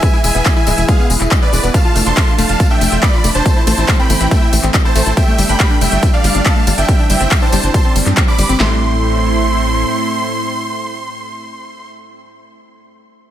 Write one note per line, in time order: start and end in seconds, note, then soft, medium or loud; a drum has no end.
0.00 1.71 E3 medium
0.00 0.08 G#3 loud
0.00 1.70 E4 medium
0.00 1.71 G#4 medium
0.00 1.71 B4 loud
0.00 0.19 E5 medium
0.00 0.19 G#5 loud
0.00 kick loud
0.00 closed hi-hat medium
0.00 tambourine medium
0.13 0.19 E4 medium
0.13 tambourine soft
0.24 0.31 E1 medium
0.24 0.28 G#3 medium
0.24 0.51 E5 medium
0.24 0.51 G#5 loud
0.24 open hi-hat loud
0.24 tambourine loud
0.35 0.42 E1 medium
0.35 0.41 B3 medium
0.35 closed hi-hat medium
0.35 tambourine soft
0.46 0.49 G#3 medium
0.46 kick loud
0.46 clap loud
0.46 closed hi-hat medium
0.46 tambourine medium
0.56 0.62 E4 medium
0.56 0.83 E5 medium
0.56 0.83 G#5 loud
0.56 tambourine soft
0.67 0.74 D1 loud
0.67 0.73 G#3 loud
0.67 open hi-hat medium
0.67 tambourine loud
0.78 0.84 E1 medium
0.78 0.83 E4 medium
0.78 closed hi-hat medium
0.78 tambourine soft
0.88 0.92 G#3 medium
0.88 1.06 G#4 medium
0.88 1.06 F5 medium
0.88 kick loud
0.88 closed hi-hat medium
0.88 tambourine medium
0.99 1.05 B3 medium
0.99 tambourine soft
1.10 1.16 E1 loud
1.10 1.13 G#3 medium
1.10 open hi-hat loud
1.10 tambourine medium
1.21 1.27 E1 medium
1.21 1.26 E4 medium
1.21 clap soft
1.21 closed hi-hat medium
1.21 tambourine soft
1.31 1.37 G#3 loud
1.31 kick loud
1.31 clap loud
1.31 closed hi-hat medium
1.31 tambourine medium
1.42 1.48 E4 medium
1.42 1.69 B4 medium
1.42 1.69 D5 medium
1.42 tambourine soft
1.53 1.59 E1 loud
1.53 1.56 G#3 medium
1.53 open hi-hat medium
1.53 tambourine loud
1.63 1.70 E1 medium
1.63 1.69 B3 medium
1.63 closed hi-hat medium
1.63 tambourine soft
1.74 3.44 F3 medium
1.74 3.44 A3 medium
1.74 1.80 A3 loud
1.74 3.44 D4 loud
1.74 2.01 F5 medium
1.74 2.01 A5 loud
1.74 kick loud
1.74 closed hi-hat medium
1.74 ride medium
1.74 tambourine medium
1.85 1.91 F4 medium
1.85 tambourine soft
1.96 2.02 F1 medium
1.96 1.99 A3 medium
1.96 open hi-hat loud
1.96 ride medium
1.96 tambourine medium
2.06 2.13 F1 medium
2.06 2.12 D4 medium
2.06 2.33 A5 medium
2.06 2.33 C6 loud
2.06 closed hi-hat medium
2.06 tambourine soft
2.17 2.20 A3 medium
2.17 kick loud
2.17 clap loud
2.17 closed hi-hat medium
2.17 ride medium
2.17 tambourine soft
2.28 2.33 F4 medium
2.28 tambourine soft
2.38 2.45 F1 medium
2.38 2.44 A3 loud
2.38 2.65 F5 medium
2.38 2.65 A5 medium
2.38 open hi-hat medium
2.38 ride medium
2.38 tambourine medium
2.49 2.56 F1 medium
2.49 2.55 F4 medium
2.49 closed hi-hat medium
2.49 tambourine soft
2.60 2.63 A3 medium
2.60 kick loud
2.60 closed hi-hat medium
2.60 ride medium
2.60 tambourine medium
2.71 2.76 D4 medium
2.71 2.97 E5 medium
2.71 2.97 G5 loud
2.71 tambourine soft
2.81 2.88 F1 medium
2.81 2.85 A3 medium
2.81 open hi-hat loud
2.81 ride medium
2.81 tambourine medium
2.92 2.99 F1 medium
2.92 2.98 F4 medium
2.92 closed hi-hat medium
2.92 tambourine soft
3.03 3.08 A3 loud
3.03 3.29 D5 medium
3.03 3.29 B5 loud
3.03 kick loud
3.03 clap loud
3.03 closed hi-hat medium
3.03 ride medium
3.03 tambourine medium
3.13 3.19 F4 medium
3.13 tambourine soft
3.24 3.31 F1 loud
3.24 3.28 A3 medium
3.24 open hi-hat medium
3.24 ride medium
3.24 tambourine medium
3.35 3.41 F1 medium
3.35 3.41 D4 medium
3.35 3.62 C5 medium
3.35 3.62 A5 loud
3.35 closed hi-hat medium
3.35 tambourine soft
3.46 5.15 E3 medium
3.46 3.49 A3 medium
3.46 6.85 A3 medium
3.46 5.15 C4 medium
3.46 kick loud
3.46 closed hi-hat medium
3.46 ride medium
3.46 tambourine medium
3.56 3.62 E4 medium
3.56 tambourine soft
3.67 3.74 A1 medium
3.67 3.73 A3 loud
3.67 3.94 C5 medium
3.67 3.94 A5 loud
3.67 open hi-hat loud
3.67 ride medium
3.67 tambourine medium
3.78 3.84 A1 medium
3.78 3.83 E4 medium
3.78 closed hi-hat medium
3.78 tambourine soft
3.88 3.92 A3 medium
3.88 kick loud
3.88 clap loud
3.88 closed hi-hat medium
3.88 ride medium
3.88 tambourine soft
3.99 4.05 C4 medium
3.99 4.26 G5 medium
3.99 4.26 B5 loud
3.99 tambourine soft
4.10 4.16 G1 loud
4.10 4.13 A3 medium
4.10 open hi-hat medium
4.10 ride medium
4.10 tambourine medium
4.21 4.27 A1 medium
4.21 4.26 E4 medium
4.21 closed hi-hat medium
4.21 tambourine soft
4.31 4.37 A3 loud
4.31 4.49 E5 medium
4.31 4.49 G5 medium
4.31 kick loud
4.31 closed hi-hat medium
4.31 ride medium
4.31 tambourine soft
4.42 4.48 E4 medium
4.42 tambourine soft
4.53 4.59 A1 loud
4.53 4.56 A3 medium
4.53 open hi-hat loud
4.53 ride medium
4.53 tambourine medium
4.63 4.70 A1 medium
4.63 4.69 C4 medium
4.63 clap soft
4.63 closed hi-hat medium
4.63 tambourine soft
4.74 4.78 A3 medium
4.74 kick loud
4.74 clap loud
4.74 closed hi-hat medium
4.74 ride medium
4.74 tambourine medium
4.85 4.91 E4 medium
4.85 5.12 C5 medium
4.85 5.12 A5 loud
4.85 tambourine soft
4.95 5.02 A1 loud
4.95 5.01 A3 loud
4.95 open hi-hat medium
4.95 ride medium
4.95 tambourine medium
5.06 5.13 A1 medium
5.06 5.12 E4 medium
5.06 closed hi-hat medium
5.06 tambourine soft
5.17 6.87 G3 medium
5.17 5.20 G3 medium
5.17 8.56 D4 medium
5.17 5.44 E5 medium
5.17 5.44 G5 loud
5.17 kick loud
5.17 closed hi-hat medium
5.17 ride medium
5.17 tambourine soft
5.28 5.33 A3 medium
5.28 tambourine soft
5.38 5.45 G1 medium
5.38 5.42 G3 medium
5.38 open hi-hat loud
5.38 ride medium
5.38 tambourine medium
5.49 5.56 G1 medium
5.49 5.55 D4 medium
5.49 5.76 G5 medium
5.49 5.76 B5 loud
5.49 closed hi-hat medium
5.49 tambourine soft
5.60 5.66 G3 loud
5.60 kick loud
5.60 clap loud
5.60 closed hi-hat medium
5.60 ride medium
5.60 tambourine soft
5.70 5.76 D4 medium
5.70 tambourine soft
5.81 5.88 F1 loud
5.81 5.85 G3 medium
5.81 6.08 E5 medium
5.81 6.08 G5 medium
5.81 open hi-hat medium
5.81 ride medium
5.81 tambourine medium
5.92 5.99 G1 medium
5.92 5.98 A3 medium
5.92 closed hi-hat medium
6.03 6.06 G3 medium
6.03 kick loud
6.03 closed hi-hat medium
6.03 ride medium
6.03 tambourine soft
6.13 6.19 D4 medium
6.13 6.40 D5 medium
6.13 6.40 F5 loud
6.13 tambourine soft
6.24 6.31 G1 loud
6.24 6.30 G3 loud
6.24 open hi-hat loud
6.24 ride medium
6.24 tambourine medium
6.35 6.42 G1 medium
6.35 6.41 D4 medium
6.35 closed hi-hat medium
6.35 tambourine soft
6.46 6.49 G3 medium
6.46 6.72 F5 medium
6.46 6.72 A5 medium
6.46 kick loud
6.46 clap loud
6.46 closed hi-hat medium
6.46 ride medium
6.46 tambourine soft
6.56 6.62 A3 medium
6.56 tambourine soft
6.67 6.74 G1 loud
6.67 6.71 G3 medium
6.67 open hi-hat medium
6.67 ride medium
6.67 tambourine medium
6.78 6.84 G1 medium
6.78 6.84 D4 medium
6.78 7.04 E5 medium
6.78 7.04 G5 loud
6.78 closed hi-hat medium
6.78 tambourine soft
6.88 7.73 E3 medium
6.88 6.94 G3 medium
6.88 8.58 C4 medium
6.88 kick loud
6.88 closed hi-hat medium
6.88 ride medium
6.88 tambourine soft
6.99 7.05 D4 medium
6.99 tambourine soft
7.09 7.17 G1 medium
7.09 7.13 G3 medium
7.09 7.37 E5 medium
7.09 7.37 G5 loud
7.09 open hi-hat loud
7.09 ride medium
7.09 tambourine medium
7.21 7.27 G1 medium
7.21 7.26 C4 medium
7.21 closed hi-hat medium
7.21 tambourine soft
7.31 7.35 G3 medium
7.31 kick loud
7.31 clap loud
7.31 closed hi-hat medium
7.31 ride medium
7.31 tambourine soft
7.42 7.48 D4 medium
7.42 7.69 C5 medium
7.42 7.69 A5 loud
7.42 tambourine soft
7.52 7.59 G1 loud
7.52 7.58 G3 loud
7.52 open hi-hat medium
7.52 ride medium
7.52 tambourine medium
7.63 7.70 G1 medium
7.63 7.69 D4 medium
7.63 closed hi-hat medium
7.63 tambourine soft
7.74 8.59 G3 medium
7.74 7.78 G3 medium
7.74 7.92 A5 medium
7.74 7.92 C6 medium
7.74 kick loud
7.74 closed hi-hat medium
7.74 ride medium
7.74 tambourine soft
7.84 7.91 C4 medium
7.84 tambourine soft
7.96 8.02 G1 loud
7.96 7.99 G3 medium
7.96 open hi-hat loud
7.96 ride medium
7.96 tambourine medium
8.06 8.13 G2 medium
8.06 8.12 D4 medium
8.06 clap soft
8.06 closed hi-hat medium
8.06 tambourine soft
8.16 8.23 G3 loud
8.16 kick loud
8.16 clap loud
8.16 closed hi-hat medium
8.16 ride medium
8.16 tambourine soft
8.28 8.33 D4 medium
8.28 8.54 B5 medium
8.28 8.54 D6 medium
8.28 tambourine soft
8.38 8.45 G1 loud
8.38 8.42 G3 medium
8.38 open hi-hat medium
8.38 ride medium
8.38 tambourine medium
8.49 8.56 G1 medium
8.49 8.55 C4 medium
8.49 closed hi-hat medium
8.49 tambourine soft
8.60 9.84 A1 medium
8.60 11.89 A2 medium
8.60 11.89 A3 medium
8.60 8.80 A3 medium
8.60 11.89 C4 medium
8.60 11.89 E4 medium
8.60 11.90 C6 loud
8.60 snare loud
8.60 clap medium